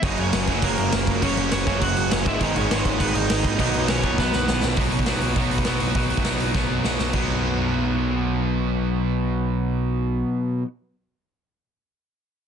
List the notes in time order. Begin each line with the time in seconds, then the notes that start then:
0.03 F#1 F#2 C#3 F#3 A#3 C#4 D#4 F#4 D#5, kick, crash
0.18 F#1 C#4 C#5, crash
0.33 F#1 F#2 C#3 F#3, snare, crash
0.47 F#1 C#3 F#3 A#3 C#4 F#4, kick, crash
0.51 F#2
0.62 F#1 F#2 C#3 F#3 A#3 A#4, kick, crash
0.78 F#1 A#3 A#4, crash
0.92 F#1 F#2 C#3 F#3, snare, crash
1.07 F#1, kick, crash
1.22 F#1 F#2 C#3 F#3 A#3 C#4 F#4 C#5, kick, crash
1.37 F#1, crash
1.52 F#1 F#2 C#3 F#3 C#4 C#5, snare, crash
1.67 F#1 C#3 F#3 A#3 C#4 F#4, kick, crash
1.71 F#2
1.81 F#1 F#2 C#3 F#3 F#4 F#5, kick, crash
1.97 F#1, crash
2.11 F#1 F#2 C#3 F#3 C#4 C#5, snare, crash
2.26 G#1 G#2 D#3 G#3 B3 D#4 E4 E5, kick, crash
2.41 G#1 G#2 D#3 G#3 D#4 D#5, kick, crash
2.55 G#1 C#4 C#5, crash
2.70 G#1 G#2 D#3 G#3 B3 D#4, snare, crash
2.85 G#1, kick, crash
2.99 G#1 G#2 D#3 G#3 B3 B4, kick, crash
3.15 G#1 D#4 D#5, crash
3.29 G#1 G#2 D#3 G#3, snare, crash
3.44 G#1, kick, crash
3.58 B1 B2 D#3 F#3 B3 D#4 D#5, kick, crash
3.74 B1, crash
3.88 B1 B2 F#3 B3 C#4 C#5, snare, crash
4.02 B1 B2 D#3 F#3 B3 D#4, kick, crash
4.17 B1 B2 F#3 B3 B4, kick, snare
4.33 B1, snare
4.47 B1 B2 F#3 B3, snare
4.62 B1, snare
4.76 B1 B2 F#3 B3 D#4 F#4, kick, open hi-hat
4.92 B1, open hi-hat
4.99 kick
5.06 B1 B2 F#3 B3 D#4 F#4, snare, open hi-hat
5.21 B1, open hi-hat
5.36 B1 B2 F#3 B3 D#4 F#4, kick, open hi-hat
5.51 B1, open hi-hat
5.58 kick
5.65 B1 B2 F#3 B3 D#4 F#4, snare, open hi-hat
5.80 B1, open hi-hat
5.95 B1 B2 F#3 B3 D#4 F#4, kick, open hi-hat
6.10 B1, open hi-hat
6.17 kick
6.25 B1 B2 F#3 B3 D#4 F#4, snare, open hi-hat
6.40 open hi-hat
6.55 B1 B2 F#3 B3 D#4 F#4, kick, snare
6.70 B1
6.84 B1 B2 F#3 B3 D#4 F#4, snare
6.99 B1, snare
7.13 B1 B2 F#3 B3, kick, crash
7.17 D#4